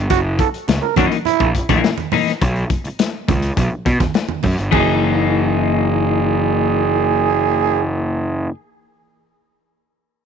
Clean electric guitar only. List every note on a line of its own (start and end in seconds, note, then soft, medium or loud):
0.97 1.17 E3 medium
0.97 1.17 A#3 medium
0.97 1.17 D#4 medium
1.69 1.90 E3 medium
1.69 1.89 A#3 medium
1.69 1.89 E4 medium
2.13 2.31 E3 medium
2.13 2.31 A#3 medium
2.13 2.32 D#4 loud
4.71 8.49 E3 medium
4.71 8.52 A#3 medium
4.77 8.54 D#4 loud